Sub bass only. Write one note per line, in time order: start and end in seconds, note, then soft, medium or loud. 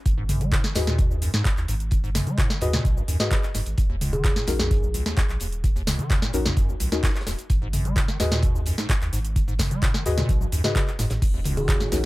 0.06 0.59 G#1 loud
0.76 1.29 D#2 medium
1.34 1.42 G#2 loud
1.57 1.65 D#2 loud
1.69 2.22 G#1 medium
2.62 2.79 D#2 medium
2.85 3.02 B1 medium
3.08 3.17 D#2 loud
3.55 3.63 F#1 medium
3.66 3.75 G#1 medium
3.78 4.31 D#1 loud
4.48 5.01 A#1 medium
5.06 5.14 D#2 loud
5.29 5.38 A#1 loud
5.41 5.94 D#1 medium
6.34 6.51 A#1 medium
6.57 6.74 F#1 medium
6.80 6.89 A#1 loud
7.27 7.35 D#1 loud
7.50 8.03 G#1 loud
8.20 8.73 D#2 medium
8.78 8.86 G#2 loud
9.01 9.10 D#2 loud
9.13 9.66 G#1 medium
10.06 10.23 D#2 medium
10.29 10.46 B1 medium
10.52 10.61 D#2 loud
10.99 11.07 F#1 medium
11.11 11.19 G#1 medium
11.22 11.75 D#1 loud
11.92 12.05 A#1 medium